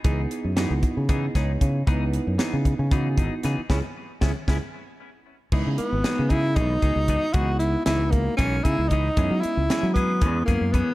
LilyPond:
<<
  \new Staff \with { instrumentName = "Tenor saxophone" } { \time 7/8 \key cis \minor \tempo 4 = 115 r2. r8 | r2. r8 | r2. r8 | r8 b4 e'8 dis'4. |
fis'8 e'8 e'8 ais8 cis'8 e'8 dis'8~ | dis'8 e'4 b4 ais8 b8 | }
  \new Staff \with { instrumentName = "Tine electric piano" } { \time 7/8 \key cis \minor << { r2 r8 cis''4 | r2. r8 | <cis' e' gis'>8 r8 <cis' e' gis'>8 <cis' e' gis'>8 r4. | r2. r8 |
r2. r8 | r2. r8 | } \\ { <b dis' e' gis'>4 <b dis' e' fis'>4 <b dis' e' gis'>4. | <b dis' e' b'>4 <b dis' e' b'>4 <b dis' e' fis'>4. | r2. r8 | <gis b dis' e'>4 <gis b dis' fis'>4 <gis b dis' fis'>4. |
<gis b dis' e'>4 <gis b dis' fis'>4 <gis b dis' e'>4. | <gis b cis' e'>4 <gis b cis' e'>4 <gis b cis' e'>4. | } >> }
  \new Staff \with { instrumentName = "Clean electric guitar" } { \time 7/8 \key cis \minor <e b dis' gis'>8 r8 <e b dis' gis'>8 r8 <e b dis' gis'>8 <b dis' gis'>8 r8 | <e b dis' gis'>8 r8 <e b dis' gis'>8 r8 <e b dis' gis'>8 <b dis' gis'>8 <e b dis' gis'>8 | <b cis' e'>8 r8 <b cis' e'>8 <b cis' e'>8 r4. | <e b dis' gis'>8 r8 <e b dis' gis'>8 <b dis' gis'>8 <e b dis' gis'>8 <b dis' gis'>8 <e b dis' gis'>8 |
<e b dis' gis'>8 r8 <e b dis' gis'>8 r8 <e b dis' gis'>8 <b dis' gis'>8 <e b dis' gis'>8 | <e b cis' gis'>8 r8 <e b cis' gis'>8 <b cis' gis'>8 <e b cis' gis'>8 <b cis' gis'>8 <e b cis' gis'>8 | }
  \new Staff \with { instrumentName = "Fingered electric bass" } { \clef bass \time 7/8 \key cis \minor cis,8 r16 fis,8 cis,16 r16 cis8. cis,8 cis8 | cis,8. fis,16 r16 cis8 cis8. gis,,16 r16 cis16 r16 | cis,16 r8. cis,16 r16 cis,16 r4. r16 | cis,16 cis16 r16 gis,,16 r16 cis8. b,,8 cis,16 cis,8 r16 |
cis,4 cis,4 b,,8 cis16 cis,8. | fis,16 fis16 r16 cis,16 r16 fis8. e,8 fis,16 fis,8 r16 | }
  \new DrumStaff \with { instrumentName = "Drums" } \drummode { \time 7/8 <hh bd>8 hh8 <hh sn>8 <hh bd>8 <hh bd>8 <hh bd sn>8 <hh bd>8 | <hh bd>8 hh8 <hh sn>8 <hh bd>8 <hh bd>8 <hh bd>8 <hh sn>8 | <bd sn>4 <bd sn>8 <bd sn>8 r4. | <cymc bd>8 hh8 <hh sn>8 <hh bd>8 <hh bd>8 <hh bd>8 <hh bd>8 |
<hh bd>8 hh8 <hh sn>8 <hh bd>8 <hh bd>8 <hh bd>8 <hh bd>8 | <hh bd>8 hh8 <hh sn>8 <hh bd>8 <hh bd>8 <hh bd>8 <hh bd>8 | }
>>